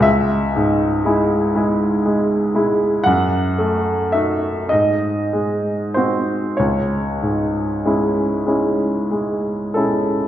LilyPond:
<<
  \new Staff \with { instrumentName = "Grand piano" } { \time 6/8 \key cis \minor \tempo 4. = 34 e''2. | fis''4 e''8 dis''4 bis'8 | cis''2~ cis''8 a'8 | }
  \new Staff \with { instrumentName = "Grand piano" } { \time 6/8 \key cis \minor cis,8 gis,8 <gis e' gis'>8 <gis e' gis'>8 gis8 <gis e' gis'>8 | fis,8 a8 <dis' fis'>8 gis,8 gis8 <bis fis'>8 | cis,8 gis,8 <gis cis' e'>8 <gis cis' e'>8 gis8 <gis cis' e'>8 | }
>>